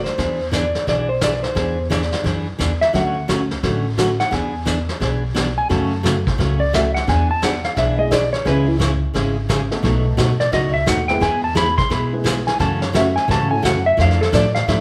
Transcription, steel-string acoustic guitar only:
0.18 E3 B3 D4 G#4
0.51 E3 B3 D4 G#4
0.87 E3 B3 D4 G#4
1.21 E3 B3 D4 G#4
1.55 E3 B3 D4 G#4
1.90 E3 B3 D4 G#4
2.24 E3 B3 D4 G#4
2.58 E3 B3 D4 G#4
2.93 D3 F#3 A3 C#4 F#4
3.28 D3 F#3 A3 C#4 F#4
3.63 D3 F#3 A3 C#4 F#4
3.98 D3 F#3 A3 C#4 F#4
4.31 E3 B3 D4 G#4
4.65 E3 B3 D4 G#4
5.00 E3 B3 D4 G#4
5.34 E3 B3 D4 G#4
5.69 C#3 F#3 A3 C#4 F#4
6.03 C#3 F#3 A3 C#4 F#4
6.38 C#3 F#3 A3 C#4 F#4
6.73 C#3 F#3 A3 C#4 F#4
7.07 E3 B3 D4 G#4
7.42 E3 B3 D4 G#4
7.76 E3 B3 D4 G#4
8.11 E3 B3 D4 G#4
8.45 C#3 G#3 C#4 E4 G#4
8.79 C#3 G#3 C#4 E4 G#4
9.14 C#3 G#3 C#4 E4 G#4
9.49 C#3 G#3 C#4 E4 G#4
9.82 B2 F#3 A3 D#4 F#4
10.17 B2 F#3 A3 D#4 F#4
10.52 B2 F#3 A3 D#4 F#4
10.86 B2 F#3 A3 D#4 F#4
11.20 E3 G#3 B3 E4 G#4
11.55 E3 G#3 B3 E4 G#4
11.90 E3 G#3 B3 E4 G#4
12.24 E3 G#3 B3 E4 G#4
12.59 C#3 E3 A3 C#4 F#4
12.93 C#3 E3 A3 C#4 F#4
13.28 C#3 E3 A3 C#4 F#4
13.62 C#3 E3 A3 C#4 F#4
13.97 F3 A3 D4 E4 A4
14.32 F3 A3 D4 E4 A4
14.68 F3 A3 D4 E4 A4

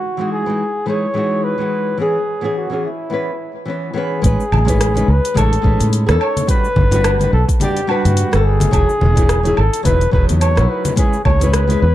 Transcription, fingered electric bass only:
4.24 A1
4.52 A1
5.08 C#2
5.36 A1
5.64 A1
5.81 A2
6.08 E2
6.77 G1
7.33 B1
8.05 G2
8.34 G1
8.73 E1
9.02 E1
9.58 G#1
9.85 E1
10.13 E1
10.30 E2
10.58 B1
11.26 C#2
11.82 E2

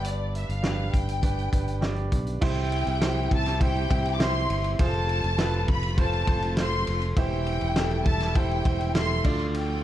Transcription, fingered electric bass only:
Already playing: G1
0.49 G1
0.94 G1
1.53 G1
2.12 B1
2.42 C2
2.87 C2
3.31 C2
3.91 C2
4.50 G1
4.80 F1
5.24 F1
5.68 F1
6.28 F1
6.88 F1
7.17 E1
7.62 E1
8.06 E1
8.65 E1
9.25 D2

